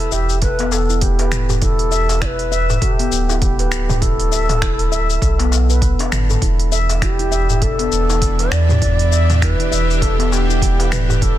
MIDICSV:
0, 0, Header, 1, 8, 480
1, 0, Start_track
1, 0, Key_signature, 1, "minor"
1, 0, Tempo, 600000
1, 1295, Time_signature, 4, 2, 24, 8
1, 9106, End_track
2, 0, Start_track
2, 0, Title_t, "Bansuri"
2, 0, Program_c, 0, 73
2, 0, Note_on_c, 0, 69, 97
2, 99, Note_on_c, 0, 67, 97
2, 111, Note_off_c, 0, 69, 0
2, 331, Note_off_c, 0, 67, 0
2, 336, Note_on_c, 0, 71, 105
2, 576, Note_on_c, 0, 69, 98
2, 588, Note_off_c, 0, 71, 0
2, 816, Note_on_c, 0, 67, 91
2, 828, Note_off_c, 0, 69, 0
2, 1196, Note_off_c, 0, 67, 0
2, 1295, Note_on_c, 0, 69, 108
2, 1773, Note_on_c, 0, 74, 93
2, 1785, Note_off_c, 0, 69, 0
2, 1806, Note_on_c, 0, 71, 101
2, 1814, Note_off_c, 0, 74, 0
2, 2249, Note_off_c, 0, 71, 0
2, 2254, Note_on_c, 0, 67, 97
2, 2702, Note_off_c, 0, 67, 0
2, 2734, Note_on_c, 0, 67, 88
2, 3210, Note_on_c, 0, 69, 113
2, 3222, Note_off_c, 0, 67, 0
2, 4653, Note_off_c, 0, 69, 0
2, 5376, Note_on_c, 0, 69, 85
2, 5430, Note_off_c, 0, 69, 0
2, 5620, Note_on_c, 0, 67, 95
2, 6101, Note_on_c, 0, 69, 111
2, 6113, Note_off_c, 0, 67, 0
2, 6820, Note_on_c, 0, 74, 123
2, 6832, Note_off_c, 0, 69, 0
2, 7537, Note_off_c, 0, 74, 0
2, 7541, Note_on_c, 0, 71, 109
2, 8020, Note_on_c, 0, 69, 102
2, 8032, Note_off_c, 0, 71, 0
2, 8260, Note_on_c, 0, 67, 102
2, 8272, Note_off_c, 0, 69, 0
2, 8740, Note_on_c, 0, 71, 99
2, 8752, Note_off_c, 0, 67, 0
2, 8979, Note_on_c, 0, 69, 99
2, 8991, Note_off_c, 0, 71, 0
2, 9106, Note_off_c, 0, 69, 0
2, 9106, End_track
3, 0, Start_track
3, 0, Title_t, "Synth texture"
3, 0, Program_c, 1, 99
3, 5134, Note_on_c, 1, 74, 78
3, 5136, Note_on_c, 1, 62, 80
3, 9106, Note_off_c, 1, 62, 0
3, 9106, Note_off_c, 1, 74, 0
3, 9106, End_track
4, 0, Start_track
4, 0, Title_t, "Handpan"
4, 0, Program_c, 2, 114
4, 96, Note_on_c, 2, 76, 105
4, 228, Note_off_c, 2, 76, 0
4, 336, Note_on_c, 2, 69, 80
4, 468, Note_off_c, 2, 69, 0
4, 475, Note_on_c, 2, 59, 80
4, 701, Note_off_c, 2, 59, 0
4, 716, Note_on_c, 2, 64, 74
4, 942, Note_off_c, 2, 64, 0
4, 956, Note_on_c, 2, 71, 78
4, 1182, Note_off_c, 2, 71, 0
4, 1194, Note_on_c, 2, 67, 77
4, 1284, Note_off_c, 2, 67, 0
4, 1295, Note_on_c, 2, 64, 83
4, 1428, Note_off_c, 2, 64, 0
4, 1532, Note_on_c, 2, 76, 98
4, 1764, Note_off_c, 2, 76, 0
4, 1772, Note_on_c, 2, 64, 82
4, 1907, Note_off_c, 2, 64, 0
4, 2014, Note_on_c, 2, 76, 109
4, 2148, Note_off_c, 2, 76, 0
4, 2254, Note_on_c, 2, 69, 78
4, 2387, Note_off_c, 2, 69, 0
4, 2395, Note_on_c, 2, 59, 80
4, 2621, Note_off_c, 2, 59, 0
4, 2636, Note_on_c, 2, 64, 71
4, 2862, Note_off_c, 2, 64, 0
4, 2876, Note_on_c, 2, 71, 78
4, 3102, Note_off_c, 2, 71, 0
4, 3115, Note_on_c, 2, 67, 76
4, 3205, Note_off_c, 2, 67, 0
4, 3214, Note_on_c, 2, 64, 81
4, 3348, Note_off_c, 2, 64, 0
4, 3455, Note_on_c, 2, 76, 103
4, 3685, Note_off_c, 2, 76, 0
4, 3694, Note_on_c, 2, 64, 81
4, 3827, Note_off_c, 2, 64, 0
4, 3934, Note_on_c, 2, 76, 104
4, 4067, Note_off_c, 2, 76, 0
4, 4174, Note_on_c, 2, 69, 75
4, 4308, Note_off_c, 2, 69, 0
4, 4317, Note_on_c, 2, 59, 80
4, 4406, Note_off_c, 2, 59, 0
4, 4558, Note_on_c, 2, 71, 91
4, 4651, Note_off_c, 2, 71, 0
4, 4792, Note_on_c, 2, 62, 75
4, 4884, Note_off_c, 2, 62, 0
4, 5036, Note_on_c, 2, 69, 78
4, 5125, Note_off_c, 2, 69, 0
4, 5138, Note_on_c, 2, 64, 79
4, 5269, Note_off_c, 2, 64, 0
4, 5376, Note_on_c, 2, 76, 97
4, 5606, Note_off_c, 2, 76, 0
4, 5616, Note_on_c, 2, 64, 84
4, 5747, Note_off_c, 2, 64, 0
4, 5756, Note_on_c, 2, 64, 79
4, 5851, Note_off_c, 2, 64, 0
4, 5853, Note_on_c, 2, 76, 105
4, 5987, Note_off_c, 2, 76, 0
4, 6095, Note_on_c, 2, 69, 77
4, 6228, Note_off_c, 2, 69, 0
4, 6233, Note_on_c, 2, 59, 79
4, 6460, Note_off_c, 2, 59, 0
4, 6475, Note_on_c, 2, 64, 69
4, 6701, Note_off_c, 2, 64, 0
4, 6714, Note_on_c, 2, 71, 75
4, 6940, Note_off_c, 2, 71, 0
4, 6954, Note_on_c, 2, 67, 79
4, 7044, Note_off_c, 2, 67, 0
4, 7053, Note_on_c, 2, 64, 81
4, 7187, Note_off_c, 2, 64, 0
4, 7292, Note_on_c, 2, 76, 102
4, 7523, Note_off_c, 2, 76, 0
4, 7534, Note_on_c, 2, 64, 84
4, 7665, Note_off_c, 2, 64, 0
4, 7675, Note_on_c, 2, 64, 78
4, 7770, Note_off_c, 2, 64, 0
4, 7772, Note_on_c, 2, 76, 107
4, 7906, Note_off_c, 2, 76, 0
4, 8011, Note_on_c, 2, 69, 76
4, 8146, Note_off_c, 2, 69, 0
4, 8150, Note_on_c, 2, 59, 82
4, 8379, Note_off_c, 2, 59, 0
4, 8394, Note_on_c, 2, 64, 74
4, 8620, Note_off_c, 2, 64, 0
4, 8633, Note_on_c, 2, 71, 80
4, 8860, Note_off_c, 2, 71, 0
4, 8872, Note_on_c, 2, 67, 81
4, 8963, Note_off_c, 2, 67, 0
4, 8975, Note_on_c, 2, 64, 82
4, 9106, Note_off_c, 2, 64, 0
4, 9106, End_track
5, 0, Start_track
5, 0, Title_t, "Synth drone"
5, 0, Program_c, 3, 95
5, 5133, Note_on_c, 3, 52, 79
5, 5370, Note_on_c, 3, 62, 91
5, 5808, Note_on_c, 3, 76, 77
5, 6139, Note_on_c, 3, 67, 96
5, 9106, Note_off_c, 3, 52, 0
5, 9106, Note_off_c, 3, 62, 0
5, 9106, Note_off_c, 3, 67, 0
5, 9106, Note_off_c, 3, 76, 0
5, 9106, End_track
6, 0, Start_track
6, 0, Title_t, "Sub bass"
6, 0, Program_c, 4, 38
6, 96, Note_on_c, 4, 28, 97
6, 2228, Note_off_c, 4, 28, 0
6, 2492, Note_on_c, 4, 26, 97
6, 4146, Note_off_c, 4, 26, 0
6, 4175, Note_on_c, 4, 35, 101
6, 4757, Note_off_c, 4, 35, 0
6, 4894, Note_on_c, 4, 31, 95
6, 5100, Note_off_c, 4, 31, 0
6, 5135, Note_on_c, 4, 28, 102
6, 6308, Note_off_c, 4, 28, 0
6, 6334, Note_on_c, 4, 28, 94
6, 6787, Note_off_c, 4, 28, 0
6, 6813, Note_on_c, 4, 40, 91
6, 7636, Note_off_c, 4, 40, 0
6, 7777, Note_on_c, 4, 28, 105
6, 9106, Note_off_c, 4, 28, 0
6, 9106, End_track
7, 0, Start_track
7, 0, Title_t, "Darbuka"
7, 338, Note_on_c, 9, 62, 57
7, 418, Note_off_c, 9, 62, 0
7, 481, Note_on_c, 9, 63, 73
7, 561, Note_off_c, 9, 63, 0
7, 574, Note_on_c, 9, 63, 67
7, 576, Note_on_c, 9, 62, 65
7, 654, Note_off_c, 9, 63, 0
7, 656, Note_off_c, 9, 62, 0
7, 954, Note_on_c, 9, 62, 52
7, 954, Note_on_c, 9, 63, 67
7, 1034, Note_off_c, 9, 62, 0
7, 1034, Note_off_c, 9, 63, 0
7, 1195, Note_on_c, 9, 64, 101
7, 1275, Note_off_c, 9, 64, 0
7, 1674, Note_on_c, 9, 63, 66
7, 1676, Note_on_c, 9, 62, 35
7, 1754, Note_off_c, 9, 63, 0
7, 1756, Note_off_c, 9, 62, 0
7, 2159, Note_on_c, 9, 64, 94
7, 2239, Note_off_c, 9, 64, 0
7, 2402, Note_on_c, 9, 62, 57
7, 2482, Note_off_c, 9, 62, 0
7, 2634, Note_on_c, 9, 62, 52
7, 2636, Note_on_c, 9, 63, 65
7, 2714, Note_off_c, 9, 62, 0
7, 2716, Note_off_c, 9, 63, 0
7, 2881, Note_on_c, 9, 62, 57
7, 2961, Note_off_c, 9, 62, 0
7, 3115, Note_on_c, 9, 64, 98
7, 3195, Note_off_c, 9, 64, 0
7, 3595, Note_on_c, 9, 63, 63
7, 3675, Note_off_c, 9, 63, 0
7, 4174, Note_on_c, 9, 62, 50
7, 4254, Note_off_c, 9, 62, 0
7, 4314, Note_on_c, 9, 63, 72
7, 4394, Note_off_c, 9, 63, 0
7, 4413, Note_on_c, 9, 62, 60
7, 4416, Note_on_c, 9, 63, 62
7, 4493, Note_off_c, 9, 62, 0
7, 4496, Note_off_c, 9, 63, 0
7, 4801, Note_on_c, 9, 62, 58
7, 4802, Note_on_c, 9, 63, 70
7, 4881, Note_off_c, 9, 62, 0
7, 4882, Note_off_c, 9, 63, 0
7, 4894, Note_on_c, 9, 63, 58
7, 4974, Note_off_c, 9, 63, 0
7, 5043, Note_on_c, 9, 64, 93
7, 5123, Note_off_c, 9, 64, 0
7, 5516, Note_on_c, 9, 63, 59
7, 5517, Note_on_c, 9, 62, 33
7, 5596, Note_off_c, 9, 63, 0
7, 5597, Note_off_c, 9, 62, 0
7, 5997, Note_on_c, 9, 64, 73
7, 6077, Note_off_c, 9, 64, 0
7, 6231, Note_on_c, 9, 62, 55
7, 6311, Note_off_c, 9, 62, 0
7, 6477, Note_on_c, 9, 62, 48
7, 6478, Note_on_c, 9, 63, 63
7, 6557, Note_off_c, 9, 62, 0
7, 6558, Note_off_c, 9, 63, 0
7, 6720, Note_on_c, 9, 62, 54
7, 6800, Note_off_c, 9, 62, 0
7, 6965, Note_on_c, 9, 64, 103
7, 7045, Note_off_c, 9, 64, 0
7, 7440, Note_on_c, 9, 63, 61
7, 7520, Note_off_c, 9, 63, 0
7, 8018, Note_on_c, 9, 62, 49
7, 8098, Note_off_c, 9, 62, 0
7, 8158, Note_on_c, 9, 63, 67
7, 8238, Note_off_c, 9, 63, 0
7, 8257, Note_on_c, 9, 63, 65
7, 8260, Note_on_c, 9, 62, 68
7, 8337, Note_off_c, 9, 63, 0
7, 8340, Note_off_c, 9, 62, 0
7, 8636, Note_on_c, 9, 63, 63
7, 8639, Note_on_c, 9, 62, 57
7, 8716, Note_off_c, 9, 63, 0
7, 8719, Note_off_c, 9, 62, 0
7, 8877, Note_on_c, 9, 64, 94
7, 8957, Note_off_c, 9, 64, 0
7, 9106, End_track
8, 0, Start_track
8, 0, Title_t, "Drums"
8, 94, Note_on_c, 9, 82, 80
8, 174, Note_off_c, 9, 82, 0
8, 236, Note_on_c, 9, 82, 44
8, 316, Note_off_c, 9, 82, 0
8, 333, Note_on_c, 9, 46, 65
8, 337, Note_on_c, 9, 36, 108
8, 337, Note_on_c, 9, 82, 34
8, 413, Note_off_c, 9, 46, 0
8, 417, Note_off_c, 9, 36, 0
8, 417, Note_off_c, 9, 82, 0
8, 470, Note_on_c, 9, 46, 47
8, 550, Note_off_c, 9, 46, 0
8, 576, Note_on_c, 9, 82, 75
8, 656, Note_off_c, 9, 82, 0
8, 718, Note_on_c, 9, 82, 45
8, 798, Note_off_c, 9, 82, 0
8, 812, Note_on_c, 9, 46, 63
8, 816, Note_on_c, 9, 36, 98
8, 816, Note_on_c, 9, 82, 35
8, 892, Note_off_c, 9, 46, 0
8, 896, Note_off_c, 9, 36, 0
8, 896, Note_off_c, 9, 82, 0
8, 951, Note_on_c, 9, 46, 45
8, 1031, Note_off_c, 9, 46, 0
8, 1053, Note_on_c, 9, 26, 88
8, 1053, Note_on_c, 9, 45, 82
8, 1057, Note_on_c, 9, 82, 88
8, 1133, Note_off_c, 9, 26, 0
8, 1133, Note_off_c, 9, 45, 0
8, 1137, Note_off_c, 9, 82, 0
8, 1196, Note_on_c, 9, 82, 45
8, 1276, Note_off_c, 9, 82, 0
8, 1293, Note_on_c, 9, 46, 66
8, 1295, Note_on_c, 9, 36, 123
8, 1297, Note_on_c, 9, 82, 36
8, 1373, Note_off_c, 9, 46, 0
8, 1375, Note_off_c, 9, 36, 0
8, 1377, Note_off_c, 9, 82, 0
8, 1433, Note_on_c, 9, 46, 43
8, 1513, Note_off_c, 9, 46, 0
8, 1536, Note_on_c, 9, 82, 83
8, 1616, Note_off_c, 9, 82, 0
8, 1674, Note_on_c, 9, 46, 27
8, 1678, Note_on_c, 9, 82, 45
8, 1754, Note_off_c, 9, 46, 0
8, 1758, Note_off_c, 9, 82, 0
8, 1773, Note_on_c, 9, 26, 76
8, 1773, Note_on_c, 9, 46, 63
8, 1775, Note_on_c, 9, 36, 111
8, 1777, Note_on_c, 9, 82, 34
8, 1853, Note_off_c, 9, 26, 0
8, 1853, Note_off_c, 9, 46, 0
8, 1855, Note_off_c, 9, 36, 0
8, 1857, Note_off_c, 9, 82, 0
8, 1913, Note_on_c, 9, 46, 44
8, 1993, Note_off_c, 9, 46, 0
8, 2019, Note_on_c, 9, 82, 76
8, 2099, Note_off_c, 9, 82, 0
8, 2159, Note_on_c, 9, 82, 47
8, 2239, Note_off_c, 9, 82, 0
8, 2254, Note_on_c, 9, 36, 115
8, 2255, Note_on_c, 9, 46, 68
8, 2259, Note_on_c, 9, 82, 38
8, 2334, Note_off_c, 9, 36, 0
8, 2335, Note_off_c, 9, 46, 0
8, 2339, Note_off_c, 9, 82, 0
8, 2395, Note_on_c, 9, 46, 41
8, 2475, Note_off_c, 9, 46, 0
8, 2497, Note_on_c, 9, 82, 78
8, 2577, Note_off_c, 9, 82, 0
8, 2639, Note_on_c, 9, 82, 48
8, 2719, Note_off_c, 9, 82, 0
8, 2734, Note_on_c, 9, 36, 106
8, 2734, Note_on_c, 9, 46, 65
8, 2738, Note_on_c, 9, 82, 34
8, 2814, Note_off_c, 9, 36, 0
8, 2814, Note_off_c, 9, 46, 0
8, 2818, Note_off_c, 9, 82, 0
8, 2874, Note_on_c, 9, 46, 42
8, 2954, Note_off_c, 9, 46, 0
8, 2973, Note_on_c, 9, 26, 82
8, 2977, Note_on_c, 9, 82, 93
8, 3053, Note_off_c, 9, 26, 0
8, 3057, Note_off_c, 9, 82, 0
8, 3115, Note_on_c, 9, 45, 76
8, 3119, Note_on_c, 9, 82, 47
8, 3195, Note_off_c, 9, 45, 0
8, 3199, Note_off_c, 9, 82, 0
8, 3215, Note_on_c, 9, 36, 115
8, 3215, Note_on_c, 9, 46, 67
8, 3219, Note_on_c, 9, 82, 34
8, 3295, Note_off_c, 9, 36, 0
8, 3295, Note_off_c, 9, 46, 0
8, 3299, Note_off_c, 9, 82, 0
8, 3356, Note_on_c, 9, 46, 42
8, 3436, Note_off_c, 9, 46, 0
8, 3459, Note_on_c, 9, 82, 79
8, 3539, Note_off_c, 9, 82, 0
8, 3594, Note_on_c, 9, 45, 53
8, 3594, Note_on_c, 9, 46, 27
8, 3599, Note_on_c, 9, 82, 43
8, 3674, Note_off_c, 9, 45, 0
8, 3674, Note_off_c, 9, 46, 0
8, 3679, Note_off_c, 9, 82, 0
8, 3695, Note_on_c, 9, 36, 111
8, 3696, Note_on_c, 9, 26, 72
8, 3696, Note_on_c, 9, 46, 66
8, 3700, Note_on_c, 9, 82, 34
8, 3775, Note_off_c, 9, 36, 0
8, 3776, Note_off_c, 9, 26, 0
8, 3776, Note_off_c, 9, 46, 0
8, 3780, Note_off_c, 9, 82, 0
8, 3833, Note_on_c, 9, 46, 44
8, 3913, Note_off_c, 9, 46, 0
8, 3939, Note_on_c, 9, 82, 77
8, 4019, Note_off_c, 9, 82, 0
8, 4080, Note_on_c, 9, 82, 47
8, 4160, Note_off_c, 9, 82, 0
8, 4175, Note_on_c, 9, 36, 114
8, 4177, Note_on_c, 9, 46, 63
8, 4182, Note_on_c, 9, 82, 34
8, 4255, Note_off_c, 9, 36, 0
8, 4257, Note_off_c, 9, 46, 0
8, 4262, Note_off_c, 9, 82, 0
8, 4316, Note_on_c, 9, 46, 42
8, 4396, Note_off_c, 9, 46, 0
8, 4421, Note_on_c, 9, 82, 72
8, 4501, Note_off_c, 9, 82, 0
8, 4560, Note_on_c, 9, 82, 49
8, 4640, Note_off_c, 9, 82, 0
8, 4654, Note_on_c, 9, 36, 102
8, 4655, Note_on_c, 9, 46, 61
8, 4659, Note_on_c, 9, 82, 35
8, 4734, Note_off_c, 9, 36, 0
8, 4735, Note_off_c, 9, 46, 0
8, 4739, Note_off_c, 9, 82, 0
8, 4795, Note_on_c, 9, 46, 45
8, 4875, Note_off_c, 9, 46, 0
8, 4897, Note_on_c, 9, 26, 88
8, 4897, Note_on_c, 9, 45, 79
8, 4901, Note_on_c, 9, 82, 87
8, 4977, Note_off_c, 9, 26, 0
8, 4977, Note_off_c, 9, 45, 0
8, 4981, Note_off_c, 9, 82, 0
8, 5040, Note_on_c, 9, 82, 51
8, 5120, Note_off_c, 9, 82, 0
8, 5135, Note_on_c, 9, 36, 111
8, 5136, Note_on_c, 9, 46, 67
8, 5140, Note_on_c, 9, 82, 34
8, 5215, Note_off_c, 9, 36, 0
8, 5216, Note_off_c, 9, 46, 0
8, 5220, Note_off_c, 9, 82, 0
8, 5276, Note_on_c, 9, 46, 45
8, 5356, Note_off_c, 9, 46, 0
8, 5378, Note_on_c, 9, 82, 77
8, 5458, Note_off_c, 9, 82, 0
8, 5515, Note_on_c, 9, 46, 27
8, 5519, Note_on_c, 9, 82, 44
8, 5595, Note_off_c, 9, 46, 0
8, 5599, Note_off_c, 9, 82, 0
8, 5615, Note_on_c, 9, 36, 111
8, 5616, Note_on_c, 9, 26, 78
8, 5616, Note_on_c, 9, 46, 63
8, 5620, Note_on_c, 9, 82, 34
8, 5695, Note_off_c, 9, 36, 0
8, 5696, Note_off_c, 9, 26, 0
8, 5696, Note_off_c, 9, 46, 0
8, 5700, Note_off_c, 9, 82, 0
8, 5754, Note_on_c, 9, 46, 43
8, 5834, Note_off_c, 9, 46, 0
8, 5857, Note_on_c, 9, 82, 75
8, 5937, Note_off_c, 9, 82, 0
8, 5997, Note_on_c, 9, 82, 42
8, 6077, Note_off_c, 9, 82, 0
8, 6094, Note_on_c, 9, 46, 66
8, 6095, Note_on_c, 9, 36, 101
8, 6098, Note_on_c, 9, 82, 36
8, 6174, Note_off_c, 9, 46, 0
8, 6175, Note_off_c, 9, 36, 0
8, 6178, Note_off_c, 9, 82, 0
8, 6234, Note_on_c, 9, 46, 39
8, 6314, Note_off_c, 9, 46, 0
8, 6338, Note_on_c, 9, 82, 74
8, 6418, Note_off_c, 9, 82, 0
8, 6479, Note_on_c, 9, 82, 44
8, 6559, Note_off_c, 9, 82, 0
8, 6574, Note_on_c, 9, 46, 66
8, 6575, Note_on_c, 9, 36, 92
8, 6578, Note_on_c, 9, 82, 33
8, 6654, Note_off_c, 9, 46, 0
8, 6655, Note_off_c, 9, 36, 0
8, 6658, Note_off_c, 9, 82, 0
8, 6713, Note_on_c, 9, 46, 46
8, 6793, Note_off_c, 9, 46, 0
8, 6814, Note_on_c, 9, 26, 84
8, 6818, Note_on_c, 9, 82, 91
8, 6894, Note_off_c, 9, 26, 0
8, 6898, Note_off_c, 9, 82, 0
8, 6953, Note_on_c, 9, 45, 84
8, 6957, Note_on_c, 9, 82, 44
8, 7033, Note_off_c, 9, 45, 0
8, 7037, Note_off_c, 9, 82, 0
8, 7054, Note_on_c, 9, 46, 64
8, 7055, Note_on_c, 9, 36, 103
8, 7058, Note_on_c, 9, 82, 33
8, 7134, Note_off_c, 9, 46, 0
8, 7135, Note_off_c, 9, 36, 0
8, 7138, Note_off_c, 9, 82, 0
8, 7194, Note_on_c, 9, 46, 45
8, 7274, Note_off_c, 9, 46, 0
8, 7299, Note_on_c, 9, 82, 79
8, 7379, Note_off_c, 9, 82, 0
8, 7437, Note_on_c, 9, 45, 65
8, 7437, Note_on_c, 9, 46, 28
8, 7441, Note_on_c, 9, 82, 41
8, 7517, Note_off_c, 9, 45, 0
8, 7517, Note_off_c, 9, 46, 0
8, 7521, Note_off_c, 9, 82, 0
8, 7535, Note_on_c, 9, 36, 103
8, 7538, Note_on_c, 9, 26, 77
8, 7538, Note_on_c, 9, 46, 67
8, 7542, Note_on_c, 9, 82, 32
8, 7615, Note_off_c, 9, 36, 0
8, 7618, Note_off_c, 9, 26, 0
8, 7618, Note_off_c, 9, 46, 0
8, 7622, Note_off_c, 9, 82, 0
8, 7679, Note_on_c, 9, 46, 48
8, 7759, Note_off_c, 9, 46, 0
8, 7781, Note_on_c, 9, 82, 73
8, 7861, Note_off_c, 9, 82, 0
8, 7923, Note_on_c, 9, 82, 41
8, 8003, Note_off_c, 9, 82, 0
8, 8015, Note_on_c, 9, 36, 103
8, 8017, Note_on_c, 9, 46, 63
8, 8021, Note_on_c, 9, 82, 31
8, 8095, Note_off_c, 9, 36, 0
8, 8097, Note_off_c, 9, 46, 0
8, 8101, Note_off_c, 9, 82, 0
8, 8158, Note_on_c, 9, 46, 44
8, 8238, Note_off_c, 9, 46, 0
8, 8263, Note_on_c, 9, 82, 70
8, 8343, Note_off_c, 9, 82, 0
8, 8402, Note_on_c, 9, 82, 47
8, 8482, Note_off_c, 9, 82, 0
8, 8495, Note_on_c, 9, 36, 96
8, 8499, Note_on_c, 9, 46, 71
8, 8503, Note_on_c, 9, 82, 31
8, 8575, Note_off_c, 9, 36, 0
8, 8579, Note_off_c, 9, 46, 0
8, 8583, Note_off_c, 9, 82, 0
8, 8639, Note_on_c, 9, 46, 45
8, 8719, Note_off_c, 9, 46, 0
8, 8735, Note_on_c, 9, 26, 78
8, 8735, Note_on_c, 9, 45, 89
8, 8739, Note_on_c, 9, 82, 83
8, 8815, Note_off_c, 9, 26, 0
8, 8815, Note_off_c, 9, 45, 0
8, 8819, Note_off_c, 9, 82, 0
8, 8881, Note_on_c, 9, 82, 44
8, 8961, Note_off_c, 9, 82, 0
8, 8975, Note_on_c, 9, 36, 113
8, 8976, Note_on_c, 9, 46, 69
8, 8980, Note_on_c, 9, 82, 32
8, 9055, Note_off_c, 9, 36, 0
8, 9056, Note_off_c, 9, 46, 0
8, 9060, Note_off_c, 9, 82, 0
8, 9106, End_track
0, 0, End_of_file